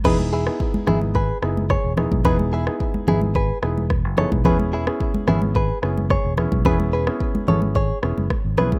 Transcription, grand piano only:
X:1
M:4/4
L:1/16
Q:1/4=109
K:E
V:1 name="Grand piano"
[B,DEG]3 [B,DEG]3 [B,DEG]2 z2 [B,DEG]2 z2 [B,DEG]2 | [B,DEG]3 [B,DEG]3 [B,DEG]2 z2 [B,DEG]2 z2 [B,DEG]2 | [B,CEG]3 [B,CEG]3 [B,CEG]2 z2 [B,CEG]2 z2 [B,CEG]2 | [B,CEG]3 [B,CEG]3 [B,CEG]2 z2 [B,CEG]2 z2 [B,CEG]2 |]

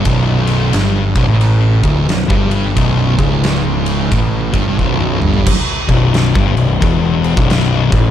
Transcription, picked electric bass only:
X:1
M:4/4
L:1/16
Q:"Swing" 1/4=89
K:Bm
V:1 name="Picked electric bass" clef=bass
B,,,,4 G,,,2 B,,,, A,,,3 D,,,2 B,,,, G,,,3 | B,,,,2 C,,,6 A,,,2 G,,,2 B,,,,2 G,,,2 | z2 B,,,,3 G,,, B,,,, B,,,, E,,,3 B,,,,3 A,,,2 |]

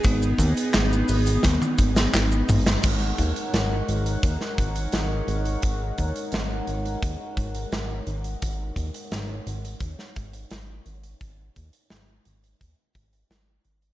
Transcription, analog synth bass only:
X:1
M:4/4
L:1/8
Q:1/4=86
K:F#mix
V:1 name="Analog synth bass" clef=bass
G,,, D,, G,,, G,,, D,, G,,, G,,, G,,, | G,,, D,, G,,, G,,, D,, G,,, G,,, G,,, | G,,, D,, G,,, G,,, D,, G,,, G,,, G,,, | G,,, D,, G,,, G,,, D,, G,,, G,,, G,,, |
G,,, D,, G,,, G,,, D,, G,,, G,,, G,,, |]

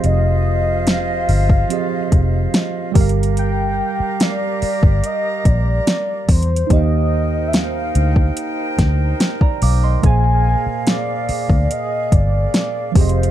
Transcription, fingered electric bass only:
X:1
M:4/4
L:1/16
Q:1/4=72
K:Bbmix
V:1 name="Fingered electric bass" clef=bass
F,,,6 G,,,2 z2 F,,,2 z2 G,,,2- | G,,,3 z4 G,,, z2 B,,,2 z2 =E,,2 | E,,6 D,,2 z2 D,,2 z2 =B,,,2 | B,,,3 z4 D,, z2 G,,,2 z2 F,,,2 |]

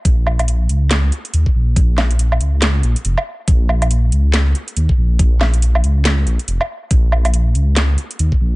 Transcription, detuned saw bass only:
X:1
M:4/4
L:1/8
Q:"Swing 16ths" 1/4=140
K:Bbm
V:1 name="Detuned saw bass" clef=bass
B,,,3 D,,2 z E,, B,,, | B,,,3 D,,2 B,,, F,,, z | B,,,3 D,,2 z E,, B,,, | B,,,3 D,,2 B,,, F,,, z |
B,,,3 D,,2 z E,, B,,, |]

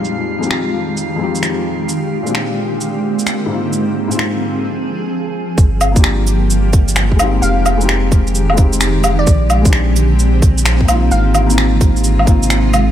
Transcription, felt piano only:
X:1
M:4/4
L:1/16
Q:"Swing 16ths" 1/4=130
K:Gphr
V:1 name="Felt piano"
[F,,A,CEG]3 [F,,A,CEG]6- [F,,A,CEG] [F,,A,CEG]6 | z3 [B,,A,CDFG]8- [B,,A,CDFG]3 [A,,B,CEF]2- | [A,,B,CEF]3 [A,,B,CEF]4- [A,,B,CEF] z8 | z3 [B,DFG]8- [B,DFG]3 [A,CEG]2- |
[A,CEG]3 [A,CEG]6- [A,CEG] [A,CEG]6 | z3 [A,CDG]8- [A,CDG]3 [B,CEF]2- | [B,CEF]3 [B,CEF]6- [B,CEF] [B,CEF]4 z2 |]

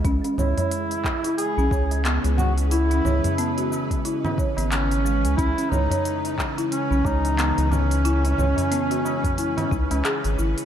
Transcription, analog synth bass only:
X:1
M:4/4
L:1/16
Q:"Swing 16ths" 1/4=90
K:C#m
V:1 name="Analog synth bass" clef=bass
C,, z C,, z6 B,,, C,,3 C,,3- | C,,2 C,, z8 G,,,4 C,, | C,, z C,, z6 B,,, C,,3 C,,3- | C,,2 C,, z6 z C,, C,, z G,,, G,,, z |]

